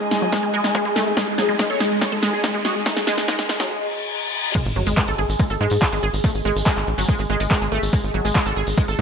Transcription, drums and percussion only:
0.01 open hi-hat
0.11 snare, open hi-hat
0.22 closed hi-hat
0.33 kick, snare, closed hi-hat
0.43 closed hi-hat
0.54 open hi-hat
0.64 snare
0.75 kick, closed hi-hat
0.85 closed hi-hat
0.96 snare, open hi-hat
1.06 closed hi-hat
1.17 kick, snare, closed hi-hat
1.28 closed hi-hat
1.38 snare, open hi-hat
1.49 closed hi-hat
1.59 kick, snare, closed hi-hat
1.70 closed hi-hat
1.80 snare, open hi-hat
1.91 closed hi-hat
2.02 kick, snare, closed hi-hat
2.12 closed hi-hat
2.23 snare, open hi-hat
2.33 closed hi-hat
2.44 kick, snare, closed hi-hat
2.54 closed hi-hat
2.65 snare, open hi-hat
2.75 closed hi-hat
2.86 kick, snare, closed hi-hat
2.97 snare, closed hi-hat
3.07 snare, open hi-hat
3.18 snare
3.28 kick, snare, closed hi-hat
3.39 snare, open hi-hat
3.49 snare, open hi-hat
3.60 snare
4.55 kick, closed hi-hat, crash, tambourine
4.65 closed hi-hat, tambourine
4.76 open hi-hat
4.86 tambourine
4.97 kick, clap, closed hi-hat, tambourine
5.08 closed hi-hat, tambourine
5.18 open hi-hat
5.29 closed hi-hat, tambourine
5.39 kick, closed hi-hat, tambourine
5.50 closed hi-hat, tambourine
5.61 open hi-hat
5.70 closed hi-hat, tambourine
5.82 kick, clap, closed hi-hat, tambourine
5.92 closed hi-hat, tambourine
6.03 open hi-hat
6.13 closed hi-hat, tambourine
6.24 kick, closed hi-hat, tambourine
6.35 closed hi-hat, tambourine
6.45 open hi-hat
6.56 closed hi-hat, tambourine
6.66 kick, clap, closed hi-hat
6.77 clap, open hi-hat, tambourine
6.87 open hi-hat
6.99 tambourine
7.09 kick, closed hi-hat
7.18 closed hi-hat, tambourine
7.30 open hi-hat
7.40 closed hi-hat, tambourine
7.51 kick, clap, closed hi-hat, tambourine
7.61 closed hi-hat, tambourine
7.72 open hi-hat
7.82 closed hi-hat, tambourine
7.93 kick, closed hi-hat, tambourine
8.03 closed hi-hat, tambourine
8.14 open hi-hat
8.25 closed hi-hat, tambourine
8.35 kick, clap, closed hi-hat, tambourine
8.46 closed hi-hat, tambourine
8.56 open hi-hat
8.67 closed hi-hat, tambourine
8.78 kick, closed hi-hat, tambourine
8.88 closed hi-hat, tambourine

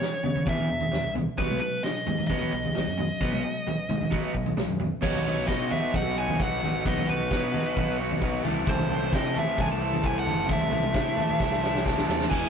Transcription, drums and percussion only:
0.02 snare
0.24 floor tom
0.35 floor tom
0.47 kick, floor tom
0.58 floor tom
0.80 floor tom
0.92 snare, floor tom
1.15 floor tom
1.38 kick, floor tom
1.49 mid tom
1.84 snare
2.06 floor tom
2.18 floor tom
2.29 kick, floor tom
2.41 floor tom
2.64 floor tom
2.76 snare, floor tom
2.99 floor tom
3.20 kick, floor tom
3.32 mid tom
3.67 floor tom
3.89 floor tom, mid tom
4.01 floor tom
4.12 kick, floor tom
4.35 kick
4.46 floor tom
4.57 snare, mid tom
4.69 floor tom
4.80 floor tom
5.02 kick, floor tom, crash
5.15 floor tom
5.26 floor tom
5.48 kick, snare
5.71 floor tom
5.94 kick, floor tom
6.28 floor tom
6.40 kick
6.63 floor tom
6.86 kick, floor tom
6.98 floor tom
7.09 floor tom
7.31 kick, snare
7.54 floor tom
7.77 kick, floor tom
8.11 floor tom
8.22 kick
8.45 floor tom
8.67 kick, floor tom
8.79 floor tom
8.90 floor tom
9.13 kick, snare
9.36 floor tom
9.58 kick, floor tom
9.93 floor tom
10.04 kick
10.27 floor tom
10.49 kick, floor tom
10.60 floor tom
10.71 floor tom
10.83 mid tom
10.94 kick, snare
11.17 floor tom
11.29 floor tom
11.40 kick, snare
11.52 snare
11.64 snare
11.75 snare
11.86 kick, snare
11.98 snare
12.09 snare
12.21 snare
12.31 kick, crash

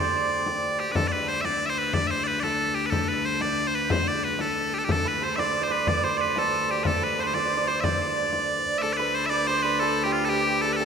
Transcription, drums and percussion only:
0.46 frame drum
0.63 frame drum
0.95 frame drum
1.13 frame drum
1.44 frame drum
1.93 frame drum
2.11 frame drum
2.43 frame drum
2.92 frame drum
3.08 frame drum
3.41 frame drum
3.90 frame drum
4.07 frame drum
4.39 frame drum
4.89 frame drum
5.05 frame drum
5.38 frame drum
5.87 frame drum
6.04 frame drum
6.36 frame drum
6.85 frame drum
7.02 frame drum
7.34 frame drum
7.84 frame drum
8.00 frame drum
8.33 frame drum
8.66 frame drum

